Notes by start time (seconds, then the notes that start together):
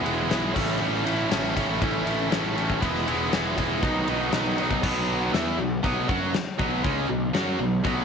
0.03 E1 E3 G#3 B3 E4, ride
0.29 B1 E3 G#3 B3 E4, snare, ride
0.53 A1 A2 E3 A3 C#4 E4, kick, crash
0.80 A1 A2 E3 A3 C#4 E4
0.94 snare
1.05 A2 E3 A3 C#4 E4, ride
1.29 A1 A2 E3 A3 C#4 E4, snare, ride
1.55 A1 A2 E3 A3 C#4 E4, kick, ride
1.80 A1 A2 E3 A3 C#4 E4, kick, ride
2.05 A1 A2 E3 A3 C#4 E4, ride
2.30 A1 A2 E3 A3 C#4 E4, snare, ride
2.56 A2 E3 A3 C#4 E4, ride
2.70 kick
2.81 E1 E3 G#3 B3 E4, kick, ride
2.95 snare
3.07 E3 G#3 B3 E4, ride
3.32 E1 E3 G#3 B3 E4, snare, ride
3.57 E1 E3 G#3 B3 E4, kick, ride
3.82 B1 B2 D#3 F#3 B3 D#4, kick, ride
4.08 B1 B2 D#3 F#3 B3 D#4, ride
4.32 B1 B2 D#3 F#3 B3 D#4, snare, ride
4.58 B2 D#3 F#3 B3 D#4, ride
4.71 kick
4.82 B1 B2 F#3 B3, kick, crash
5.32 E2 E3 B3 E4, snare, crash
5.58 B1 B2 F#3
5.83 B1 B2 F#3 B3, kick, crash
6.08 F#2 F#3 C#4 F#4, kick
6.33 muted picked electric bass stroke, muted distorted electric guitar stroke, snare, crash
6.59 B1 B2 F#3 B3, kick
6.84 C#2 C#3 G#3 C#4, kick, crash
7.08 B1 B2 F#3
7.34 F#2 F#3 C#4 F#4, snare, crash
7.59 B1 B2 F#3
7.84 B1 B2 F#3 B3, kick, crash